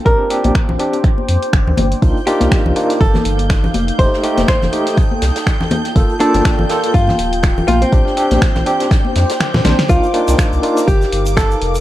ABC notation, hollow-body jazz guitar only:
X:1
M:4/4
L:1/16
Q:"Swing 16ths" 1/4=122
K:Cdor
V:1 name="Hollow-body jazz guitar"
B6 z8 z2 | z2 G6 A8 | c4 c8- c2 z2 | z2 D6 F6 F C- |
C12- C2 z2 | F8 G4 A4 |]